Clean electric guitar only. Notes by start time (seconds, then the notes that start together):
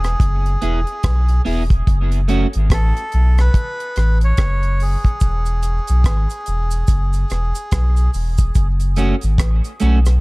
0.62 B3 E4 G#4
1.45 B3 E4 G#4
2.28 A3 C#4 F#4
8.97 A3 C#4 F#4
9.80 A3 C#4 F#4